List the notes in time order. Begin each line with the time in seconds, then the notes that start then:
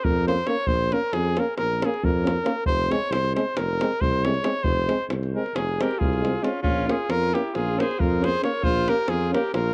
0.04 F2 A#4, davul low
0.27 A#3 C#4 C5, davul high
0.39 davul high
0.47 A#3 C#4 C#5, davul high
0.67 A#1 C5, davul low
0.91 A#3 C#4 A#4, davul high
1.13 F2 G#4, davul high
1.25 davul high
1.37 A#3 C#4 A#4, davul high
1.57 A#1 A#4, davul high
1.81 A#3 C#4 G#4, davul high
1.94 davul high
2.03 F2 A#4, davul low
2.24 A#3 C#4, davul high
2.36 davul high
2.45 A#3 C#4, davul high
2.65 F1 C5, davul low
2.89 G#3 C4 C#5, davul high
3.10 C2 C5, davul high
3.24 davul high
3.34 G#3 C4 C5, davul high
3.56 F1 A#4, davul high
3.81 G#3 C4, davul high
3.92 davul high
4.00 C2 C5, davul low
4.24 G#3 C4 C#5, davul high
4.34 davul high
4.43 G#3 C4, davul high
4.63 F1 C5, davul low
4.88 G#3 C4, davul high
5.09 C2, davul high
5.23 davul high
5.34 G#3 C4 A#4
5.46 davul high
5.55 F1 G#4, davul high
5.68 davul high
5.79 G#3 C4 G4 A#4, davul high
5.91 davul high
5.99 C2 F4 G#4, davul low
6.13 davul high
6.21 G#3, davul high
6.25 C4
6.41 G#3 C4 C#4 F4, davul high
6.63 A#1 C#4 F4, davul low
6.87 A#3 C#4 F4 G#4, davul high
7.09 F2 F4 A#4, davul high
7.23 davul high
7.33 A#3 C#4 E4 G4, davul high
7.54 A#1 F4 G#4, davul high
7.77 A#3 C#4 C5, davul high
7.81 G#4
7.91 davul high
7.99 F2 F4 A#4, davul low
8.21 A#3 C#4 G#4 C5, davul high
8.34 davul high
8.41 A#3 C#4 A#4 C#5, davul high
8.62 A#1 F4 C5, davul low
8.86 A#3 C#4 G4 A#4, davul high
9.07 F2 F4 G#4, davul high
9.21 davul high
9.32 A#3 C#4 G4 A#4, davul high
9.53 A#1 F4 A#4, davul high